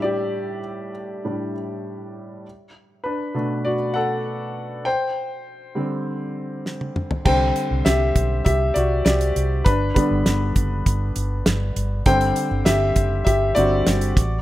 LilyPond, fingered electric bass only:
\new Staff \with { instrumentName = "Fingered electric bass" } { \clef bass \time 4/4 \key c \lydian \tempo 4 = 100 r1 | r1 | r1 | c,8 r16 c,16 c,8 b,,8 c,8 c,8 c,8 c,8 |
g,,8 r16 g,,16 g,,8 fis,,8 g,,8 g,,8 g,,8 g,,8 | g,,8 r16 g,,16 g,,8 fis,,8 g,,8 g,,8 g,,8 a,,8 | }